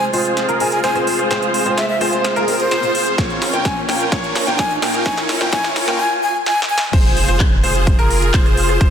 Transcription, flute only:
0.60 G#5
0.72 G#5
0.84 G#5
1.77 E5
1.89 E5
2.60 C5
3.65 G#5
4.59 G#5
5.06 G#5
5.53 G#5
6.00 G#5
6.23 G#5
6.46 G#5
6.70 G#5

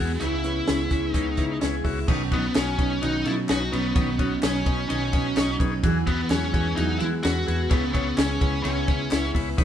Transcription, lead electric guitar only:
Already playing: B3
0.20 E4
1.09 D#4
2.33 B3
2.57 C#4
3.04 D#4
3.27 E4
3.50 F#4
3.72 B3
4.44 C#4
4.89 C#4
6.07 B3
6.30 C#4
6.76 D#4
6.99 E4
7.23 F#4
7.70 B3
7.93 B3
8.16 C#4
8.63 C#4

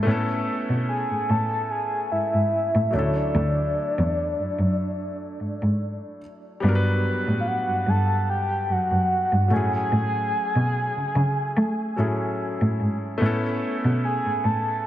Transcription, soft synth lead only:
0.89 G#5
1.29 A5
1.70 G#5
2.12 E5
2.93 C#5
3.16 D5
7.40 F5
7.47 F#5
7.89 A5
8.30 G5
8.72 F#5
9.53 G#5
9.76 G#5
14.04 G#5
14.45 A5

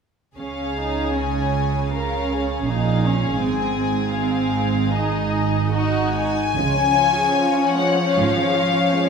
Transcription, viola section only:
0.38 C#4
0.79 D#4
1.17 C#4
1.92 C#4
2.68 D#4
3.05 C#4
3.42 C4
4.16 C4
4.93 D#4
5.74 D#4
6.58 F3 C#4

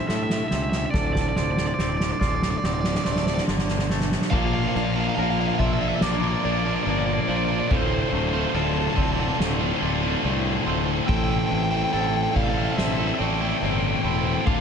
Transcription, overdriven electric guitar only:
0.07 E5
0.16 E5
0.23 E5
0.32 E5
0.39 E5
0.48 E5
0.55 E5
0.63 E5
0.70 E5
0.77 E5
0.86 E5
0.90 D5
0.98 D5
1.06 D5
1.13 D5
1.21 D5
1.29 D5
1.36 D5
1.44 D5
1.51 D5
1.59 D5
1.67 D5
1.74 D5
1.82 D5
1.90 D5
1.97 D5
2.04 D5
2.12 D5
2.20 D5
2.28 D5
2.35 D5
2.43 D5
2.50 D5
2.58 D5
2.65 D5
2.74 D5
2.81 D5
2.89 D5
2.96 D5
3.04 D5
3.12 D5
3.18 D5
3.27 D5
3.34 D5
4.30 F5
4.38 F5
4.46 F5
4.54 F5
4.61 F5
4.69 F5
4.77 F5
4.84 F5
4.92 F5
5.00 F5
5.09 F5
5.15 F5
5.23 F5
5.30 F5
5.41 F5
5.48 F5
5.55 F5
5.59 E5
5.67 E5
5.73 E5
5.81 E5
5.88 E5
5.96 E5
6.03 D5
6.12 D5
6.20 D5
6.28 D5
6.34 D5
6.45 D5
6.52 D5
6.59 D5
6.67 D5
6.75 D5
6.83 D5
6.90 D5
6.98 D5
7.06 D5
7.13 D5
7.21 D5
7.29 D5
7.36 D5
7.45 D5
7.51 D5
7.59 D5
7.68 C5 D5
7.79 C5
7.87 C5
7.94 C5
8.02 C5
8.10 C5
8.19 C5
8.26 C5
8.34 C5
8.40 C5
8.49 C5
8.55 A5
8.63 A5
8.71 A5
8.80 A5
8.87 A5
8.96 A5
9.02 A5
9.12 A5
9.20 A5
9.28 A5
11.08 G5
11.16 G5
11.24 G5
11.31 G5
11.39 G5
11.46 G5
11.54 G5
11.63 G5
11.71 G5
11.77 G5
11.84 G5
11.93 G5
12.01 G5
12.07 G5
12.16 G5
12.23 G5
12.31 G5
12.36 F5
12.44 F5
12.49 F5
12.58 F5
12.65 F5
12.72 F5
12.78 E5
12.85 E5
12.92 E5
13.00 E5
13.07 E5
13.15 E5 G5
13.27 G5
13.34 G5
13.42 G5
13.49 G5
13.57 G5
13.65 G5
13.73 G5
13.80 G5
13.87 G5
13.96 G5
14.03 G5
14.11 G5
14.18 G5
14.26 G5
14.34 G5
14.41 G5
14.46 F5
14.53 F5

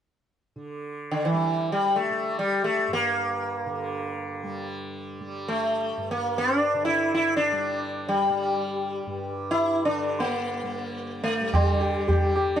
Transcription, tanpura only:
0.56 D3
1.33 G3
2.10 G3
2.88 G2
3.66 D3
4.43 G3
5.20 G3
5.98 G2
6.74 D3
7.52 G3
8.30 G3
9.07 G2
9.86 D3
10.63 G3
11.41 G3
11.53 D3
12.15 G3

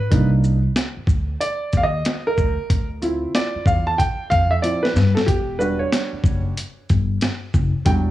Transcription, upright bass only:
0.12 C2
0.97 muted upright bass stroke
1.07 D2
1.73 D#2
2.38 D2
2.70 D2
3.55 muted upright bass stroke
3.66 E2
4.32 F2
4.96 G2
5.28 E1
6.13 muted upright bass stroke
6.24 F#1
6.90 G1
7.54 F#1
7.86 E1

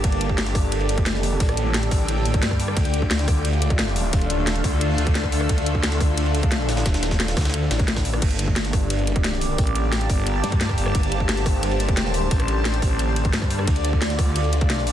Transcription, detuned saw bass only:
0.04 G1
0.99 F#1
1.26 F1
1.40 A1
1.91 A1
2.42 G2
2.77 D2
4.13 D#1
4.64 D2
4.98 D2
5.32 D2
5.49 D2
6.68 A#1
6.86 D#1
7.37 D2
7.71 A1
8.22 G1
10.44 G2
10.95 G1
12.14 D#1
13.33 G2
13.68 D2
14.87 A#1

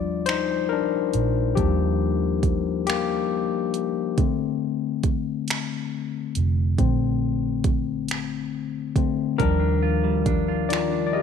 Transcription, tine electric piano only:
Already playing: F3 G3 D4 F4 D5
0.26 D#4 C5
0.69 D4 A#4
1.55 F3 G3 A#3 D4 G4
2.87 A#3 G4
4.18 D3 A3 C4
6.78 D3 A3 C4
8.97 D3 A3 C4
9.38 F3 G3 D4 A#4
10.69 F4 D5
11.06 D5
11.13 G4 D#5

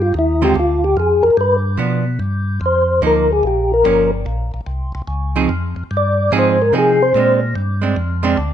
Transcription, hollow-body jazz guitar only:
0.42 D3 G#3 C4 F4
1.77 F3 B3 D4
3.02 F3 A#3 D#4
3.84 F3 A#3 C#4
5.36 F3 C4 D#4 G#4
6.32 F3 C4 D#4 G#4
6.73 F3 C4 D#4 G#4
7.15 G#3 C4 D4
7.82 G#3 C4 D4
8.23 G#3 C4 D4

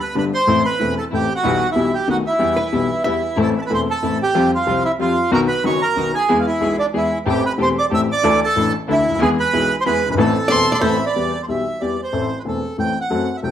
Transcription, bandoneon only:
0.00 B4 B5
0.18 B4 B5
0.34 C5 C6
0.65 B4 B5
0.98 A4 A5
1.15 G4 G5
1.35 F#4 F#5
1.72 E4 E5
1.94 G4 G5
2.10 F#4 F#5
2.27 E4 E5
3.09 E4 E5
3.41 A4 A5
3.62 A5
3.66 B4 B5
3.74 C5 C6
3.89 A4 A5
4.22 G4 G5
4.55 F4 F5
4.85 E4 E5
5.01 F4 F5
5.34 A#4 A#5
5.48 B4 B5
5.66 C#5 C#6
5.82 A#4 A#5
6.14 G#4 G#5
6.40 F5
6.47 E4 E5
6.79 D4 D5
6.97 E4 E5
7.29 G4 G5
7.46 B4 B5
7.62 C5 C6
7.79 D5 D6
7.94 E5 E6
8.12 D5 D6
8.44 A4 A5
8.92 E4 E5
9.22 G#4 G#5
9.40 B4 B5
9.81 C5 C6
9.86 B4 B5
10.11 B4 B5
10.20 A4 A5
10.83 E5
11.06 D5
11.43 C5
11.49 E5
11.81 D5
12.03 C5
12.39 B4
12.48 A4
12.80 G5
13.01 F#5
13.37 E5
13.44 G5

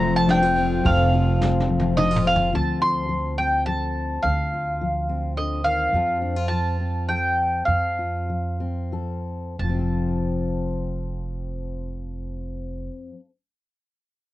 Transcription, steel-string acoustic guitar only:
Already playing: F2 C4 F4 C5
0.00 F3
0.28 D4
0.42 F4
0.59 C4
0.84 F2 A4
1.14 F4
1.42 C4
1.69 F3
1.97 D4
2.11 F4
2.26 C4
2.52 D3 F3 C4 F4 A4
2.82 F4
3.09 F3
3.39 C4
3.66 F3 A4
4.23 D3
4.54 F4
4.81 F3
5.09 C4
5.37 D3
5.65 D#3
5.93 F2 F3 C4 F4 A4
6.22 D4
6.37 F4
6.51 F3
6.80 C4
7.09 F3 A4
7.67 F2
7.99 F4
8.29 F3
8.60 C4
8.92 F3 A4
9.59 F2
9.64 F3
9.69 C4
9.74 F4
9.79 A4

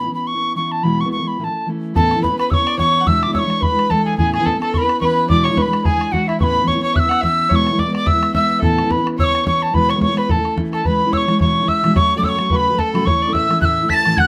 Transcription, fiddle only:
1.95 A4
2.23 B4
2.39 B4
2.51 C#5
2.67 D5
2.78 C#5
3.01 F#5
3.07 E5
3.34 C#5
3.62 B4
3.91 A4
4.06 G#4
4.18 G#4
4.33 G#4
4.46 A4
4.62 A4
4.73 B4
5.01 B4
5.30 D5
5.45 C#5
5.57 B4
5.85 G#4
6.12 F#4
6.28 E4
6.40 B4
6.67 C#5
6.83 C#5
6.95 E5
7.09 F#5
7.21 E5
7.50 C#5
7.79 D5
7.94 D5
8.06 E5
8.34 E5
8.61 A4
8.90 B4
9.18 C#5
9.45 C#5
9.75 B4
9.89 C#5
10.02 C#5
10.18 B4
10.30 A4
10.72 A4
10.85 B4
11.12 C#5
11.40 C#5
11.68 E5
11.96 C#5
12.18 D5
12.24 C#5
12.51 B4
12.80 A4
13.07 C#5
13.22 D5
13.34 E5
13.62 E5
13.90 A5
14.18 F#5

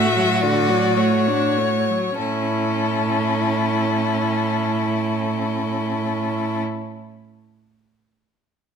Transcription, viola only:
Already playing: A3
0.17 F#3
0.43 D3
0.69 F#3
0.97 A3
1.27 D4
1.58 A3
1.89 F#3
2.18 C#4

